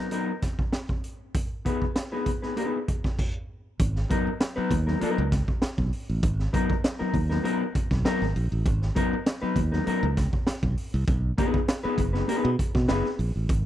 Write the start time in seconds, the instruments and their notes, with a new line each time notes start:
Already playing: clean electric guitar D#4 A#4
0.00 clean electric guitar F#3 B3
0.11 clean electric guitar F#3 B3 D#4 A#4, closed hi-hat
0.42 kick, snare, closed hi-hat
0.59 kick
0.73 snare, closed hi-hat
0.89 kick
1.04 closed hi-hat
1.34 kick, closed hi-hat
1.65 clean electric guitar B3 D#4 G#4 B4, kick, closed hi-hat
1.82 kick
1.96 snare, closed hi-hat
2.12 clean electric guitar B3 D#4 G#4 B4
2.26 kick, closed hi-hat
2.42 clean electric guitar B3 D#4 G#4 B4, snare
2.56 clean electric guitar B3 D#4 G#4 B4, closed hi-hat
2.88 kick, closed hi-hat
3.04 kick, snare
3.19 kick, crash
3.79 fingered electric bass G#1, kick, closed hi-hat
3.96 snare
4.09 clean electric guitar F#3 B3 D#4 A#4, kick, closed hi-hat
4.27 muted fingered electric bass stroke
4.40 snare, closed hi-hat
4.56 clean electric guitar F#3 B3 D#4 B4, muted fingered electric bass stroke
4.71 fingered electric bass D#2, kick, closed hi-hat
4.87 clean electric guitar F#3 B3 D#4 A#4, snare
5.00 clean electric guitar F#3 B3 D#4 A#4, muted fingered electric bass stroke, closed hi-hat
5.18 fingered electric bass C#2
5.32 kick, snare, closed hi-hat
5.48 kick
5.62 muted fingered electric bass stroke, snare, closed hi-hat
5.78 fingered electric bass B1, kick
5.93 open hi-hat
6.10 fingered electric bass A1
6.23 fingered electric bass G#1, kick, closed hi-hat
6.39 snare
6.53 clean electric guitar F#3 B3 D#4 A#4, kick, closed hi-hat
6.70 muted fingered electric bass stroke, kick
6.84 snare, closed hi-hat
6.99 clean electric guitar F#3 B3 D#4 A#4, muted fingered electric bass stroke
7.14 fingered electric bass D#2, kick, open hi-hat
7.29 clean electric guitar F#3 B3 D#4 A#4, snare
7.43 clean electric guitar F#3 B3 D#4 A#4, closed hi-hat
7.75 muted fingered electric bass stroke, kick, closed hi-hat
7.91 fingered electric bass B1, kick, snare
8.05 clean electric guitar F#3 B3 D#4 A#4, snare, closed hi-hat
8.22 fingered electric bass G#1, snare
8.36 fingered electric bass A#1, open hi-hat
8.52 fingered electric bass A1
8.66 fingered electric bass G#1, kick, closed hi-hat
8.82 snare
8.95 clean electric guitar F#3 B3 D#4 A#4, kick, closed hi-hat
9.13 muted fingered electric bass stroke
9.26 snare, closed hi-hat
9.42 clean electric guitar F#3 B3 D#4 B4, muted fingered electric bass stroke
9.56 fingered electric bass D#2, kick, closed hi-hat
9.72 clean electric guitar F#3 B3 D#4 A#4, snare
9.86 clean electric guitar F#3 B3 D#4 A#4, muted fingered electric bass stroke, closed hi-hat
10.03 fingered electric bass C#2
10.17 kick, snare, closed hi-hat
10.33 kick
10.47 muted fingered electric bass stroke, snare, closed hi-hat
10.63 fingered electric bass B1, kick
10.77 open hi-hat
10.94 fingered electric bass C2
11.08 fingered electric bass B1, kick, closed hi-hat
11.38 clean electric guitar B3 D#4 G#4 B4, kick, closed hi-hat
11.54 muted fingered electric bass stroke, kick
11.68 snare, closed hi-hat
11.83 clean electric guitar B3 D#4 G#4 B4, muted fingered electric bass stroke
11.98 fingered electric bass F#1, kick, closed hi-hat
12.13 clean electric guitar B3 D#4 G#4 B4, snare
12.28 clean electric guitar B3 D#4 G#4 B4, closed hi-hat
12.45 fingered electric bass B2
12.59 kick, closed hi-hat
12.75 fingered electric bass B2, kick, snare
12.88 fingered electric bass F#1, clean electric guitar B3 D#4 G#4 B4, snare, closed hi-hat
13.06 snare
13.19 fingered electric bass A#1, open hi-hat
13.36 fingered electric bass A1
13.49 fingered electric bass G#1, kick, closed hi-hat